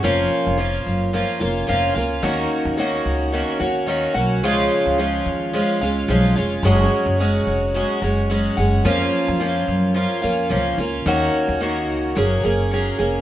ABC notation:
X:1
M:4/4
L:1/16
Q:"Swing 16ths" 1/4=109
K:F#
V:1 name="Twelve-string acoustic guitar"
[E,A,CE]4 [E,A,CE]4 [E,A,CE]2 [A,CE]2 [E,A,CE]2 [A,CE]2 | [D,A,CF]4 [D,A,CF]4 [D,A,CF]2 [A,CF]2 [D,A,CF]2 [A,CF]2 | [C,E,G,CE]4 [E,G,CE]4 [E,G,CE]2 [G,CE]2 [E,G,CE]2 [G,CE]2 | [F,G,CF]4 [F,G,CF]4 [F,G,CF]2 [G,CF]2 [F,G,CF]2 [G,CF]2 |
[E,A,CE]4 [E,A,CE]4 [E,A,CE]2 [A,CE]2 [E,A,CE]2 [A,CE]2 | [D,A,CF]4 [D,A,CF]4 [F,A,CG]2 [A,CG]2 [F,A,CG]2 [A,CG]2 |]
V:2 name="Upright bass" clef=bass
E,,,2 z E,,,3 F,,,3 z E,,,2 E,,,2 C,,2 | D,,2 z D,,3 C,,3 z D,,4 B,,,2 | C,,2 z C,,3 D,,3 z C,,2 B,,,2 E,,,2 | F,,,2 z F,,,3 E,,,3 z F,,,4 F,,,2 |
E,,2 z E,,3 F,,3 z E,,2 C,,2 C,,2 | D,,2 z D,,3 C,,2 F,,,2 F,,,4 E,,,2 |]